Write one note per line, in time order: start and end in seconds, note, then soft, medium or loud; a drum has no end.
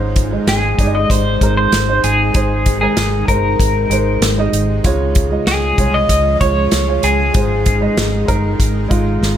0.00 0.36 G#1 loud
0.00 0.75 G#2 medium
0.00 4.81 C3 medium
0.00 4.81 D#3 medium
0.00 0.25 G#3 medium
0.00 4.81 G#3 medium
0.00 0.26 D#4 medium
0.00 4.81 D#4 medium
0.00 0.26 C5 medium
0.16 kick medium
0.16 closed hi-hat medium
0.32 0.72 G#3 medium
0.32 0.73 D#4 medium
0.32 0.73 D#5 medium
0.47 0.73 G#1 medium
0.47 0.96 G#4 medium
0.47 snare loud
0.47 closed hi-hat medium
0.78 1.04 G1 medium
0.78 1.33 G#3 medium
0.78 1.33 D#4 medium
0.78 0.86 D5 medium
0.78 kick medium
0.78 closed hi-hat medium
0.87 1.37 D#5 medium
0.95 1.11 D#5 medium
1.10 1.36 G#1 loud
1.10 1.56 C5 loud
1.10 kick medium
1.10 closed hi-hat medium
1.41 1.67 G#1 loud
1.41 1.82 G#3 medium
1.41 1.82 D#4 medium
1.41 1.83 A#4 medium
1.41 kick medium
1.41 closed hi-hat medium
1.57 2.05 C5 medium
1.72 1.98 G#1 medium
1.72 snare medium
1.72 closed hi-hat medium
1.88 2.29 G#3 medium
1.88 2.29 D#4 medium
1.88 2.29 C5 medium
2.04 2.29 G#1 loud
2.04 2.80 G#4 medium
2.04 closed hi-hat medium
2.34 2.86 G#1 loud
2.34 3.25 G#2 medium
2.34 2.75 G#3 medium
2.34 2.75 D#4 medium
2.34 2.76 C5 medium
2.34 kick loud
2.34 closed hi-hat medium
2.66 kick medium
2.66 closed hi-hat medium
2.81 3.22 G#3 medium
2.81 3.23 D#4 medium
2.81 3.28 G#4 medium
2.81 3.23 A#4 medium
2.96 3.23 G#1 medium
2.96 snare loud
2.96 closed hi-hat medium
3.28 3.54 G1 medium
3.28 3.82 G#3 medium
3.28 3.82 D#4 medium
3.28 4.49 A#4 medium
3.28 3.83 C5 medium
3.28 kick medium
3.28 closed hi-hat medium
3.59 3.85 G#1 medium
3.59 kick medium
3.59 closed hi-hat medium
3.89 4.16 G#1 loud
3.89 4.31 G#3 medium
3.89 4.32 D#4 medium
3.89 4.32 C5 medium
3.89 closed hi-hat medium
4.21 4.47 G#1 medium
4.21 snare medium
4.21 closed hi-hat medium
4.37 4.78 G#3 medium
4.37 4.79 D#4 medium
4.37 4.79 D#5 medium
4.52 4.79 G#1 loud
4.52 closed hi-hat medium
4.84 5.36 C#2 medium
4.84 5.75 C#3 medium
4.84 7.33 F3 medium
4.84 5.25 G#3 medium
4.84 9.37 G#3 medium
4.84 7.33 C#4 medium
4.84 5.26 F4 medium
4.84 7.33 F4 medium
4.84 5.26 C#5 medium
4.84 kick loud
4.84 closed hi-hat medium
5.15 kick loud
5.15 closed hi-hat medium
5.30 5.72 G#3 medium
5.30 5.72 F4 medium
5.30 5.73 D#5 medium
5.46 5.72 C#2 medium
5.46 5.96 G#4 medium
5.46 snare loud
5.46 closed hi-hat medium
5.77 6.04 C2 medium
5.77 6.32 G#3 medium
5.77 6.33 F4 medium
5.77 6.33 C#5 medium
5.77 kick medium
5.77 closed hi-hat medium
5.94 6.38 D#5 medium
6.09 6.35 C#2 loud
6.09 kick medium
6.09 closed hi-hat medium
6.40 6.67 C#2 loud
6.40 6.81 G#3 medium
6.40 6.82 F4 medium
6.40 7.05 C#5 medium
6.40 6.82 C#5 medium
6.40 kick medium
6.40 closed hi-hat medium
6.71 6.98 C#2 medium
6.71 snare medium
6.71 closed hi-hat medium
6.88 7.28 G#3 medium
6.88 7.29 F4 medium
6.88 7.29 C#5 medium
7.03 7.29 C#2 medium
7.03 9.19 G#4 medium
7.03 closed hi-hat medium
7.34 7.86 G#1 loud
7.34 8.25 G#2 medium
7.34 9.37 C3 medium
7.34 9.37 D#3 medium
7.34 7.75 G#3 medium
7.34 9.37 D#4 medium
7.34 7.75 D#4 medium
7.34 7.76 C5 medium
7.34 kick loud
7.34 closed hi-hat medium
7.66 kick medium
7.66 closed hi-hat medium
7.80 8.22 G#3 medium
7.80 8.22 D#4 medium
7.80 8.23 D#5 medium
7.97 8.23 G#1 medium
7.97 snare loud
7.97 closed hi-hat medium
8.26 8.54 G1 medium
8.26 8.81 G#3 medium
8.26 8.82 D#4 medium
8.26 8.83 A#4 loud
8.26 kick medium
8.26 closed hi-hat medium
8.60 8.86 G#1 loud
8.60 kick medium
8.60 closed hi-hat medium
8.88 9.17 G#1 medium
8.88 9.30 G#3 medium
8.88 9.31 D#4 medium
8.88 9.31 F4 medium
8.88 kick medium
8.88 closed hi-hat medium
9.21 9.37 G#1 medium
9.21 snare soft